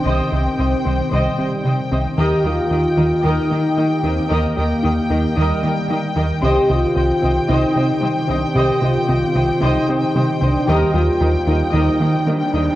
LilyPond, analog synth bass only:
\new Staff \with { instrumentName = "Analog synth bass" } { \clef bass \time 4/4 \key c \minor \tempo 4 = 113 c,8 c,8 c,8 c,8 c,8 c8 c8 c,8 | ees,8 ees,8 ees,8 ees,8 ees,8 ees8 ees8 ees,8 | ees,8 ees,8 ees,8 ees,8 ees,8 ees8 ees8 ees,8 | c,8 c,8 c,8 c,8 c,8 c8 c8 c,8 |
c,8 c,8 c,8 c,8 c,8 c8 c8 c,8 | ees,8 ees,8 ees,8 ees,8 ees,8 ees8 ees8 ees,8 | }